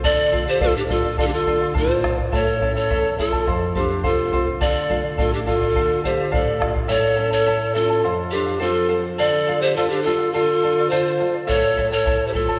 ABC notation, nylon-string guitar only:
X:1
M:2/4
L:1/8
Q:1/4=105
K:Dm
V:1 name="Nylon-string guitar"
D, [A,DF] A,, [A,DF] | D, [A,DF] A,, [A,DF] | A,, [A,^CE] E,, [A,CE] | F,, [A,CF] C, [A,CF] |
D, [A,DF] A,, [A,DF] | D, [A,DF] A,, [A,DF] | A,, ^C E C | F,, F, C F, |
D, F D, F | D, F D, F | A,, A, E A, |]